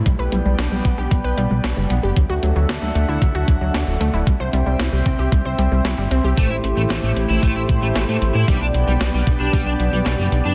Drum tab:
HH |xxxxxxxx|xxxxxxxx|xxxxxxxx|xxxxxxxx|
SD |--o---o-|--o---o-|--o---o-|--o---o-|
BD |o--oo---|o---oo--|o--oo---|o---oo--|

HH |xxxxxxxx|
SD |--o---o-|
BD |o--oo---|